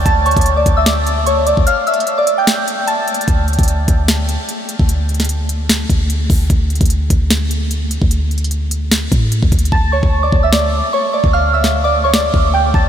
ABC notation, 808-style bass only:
X:1
M:4/4
L:1/16
Q:1/4=149
K:Dm
V:1 name="808-style bass" clef=bass
D,,3 D,,3 D,,8- D,, D,, | z16 | D,,3 D,,3 D,,4- D,, z4 D,,- | D,,8- D,,2 D,,4 D,,2 |
D,,3 D,,3 D,,8- D,, D,,- | D,,8- D,,2 A,,3 D,, D,,2 | D,,3 D,,3 D,,4- D,, z4 D,,- | D,,8- D,,2 D,,4 D,,2 |]